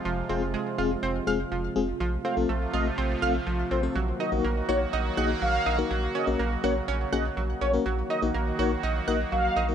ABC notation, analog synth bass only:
X:1
M:4/4
L:1/16
Q:1/4=123
K:Fphr
V:1 name="Analog synth bass" clef=bass
F,,,2 F,,,3 z F,,,2 F,,,2 F,,,2 F,,,2 F,,,2 | B,,,2 z B,,, B,,,2 B,,,2 B,,,2 B,,,2 B,,,2 B,,,2 | B,,,2 z B,,, B,,,2 B,,,2 B,,,2 B,,,2 B,,,2 B,,,2 | B,,,2 z B,,, B,,,2 B,,,2 B,,,2 B,,,2 B,,,2 B,,,2 |
B,,,2 z B,,, B,,,2 B,,,2 B,,,2 B,,,2 B,,,2 B,,,2 |]